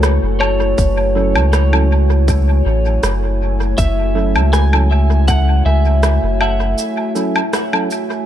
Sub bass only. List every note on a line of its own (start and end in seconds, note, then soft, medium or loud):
0.00 0.19 C#2 medium
0.23 0.75 F#1 medium
0.78 1.37 F#1 loud
1.35 2.62 C#2 loud
2.66 2.99 A1 loud
3.03 3.75 F#1 loud
3.78 4.37 F#1 loud
4.35 5.62 C#2 loud
5.65 6.19 C#2 medium
6.23 6.75 F#1 medium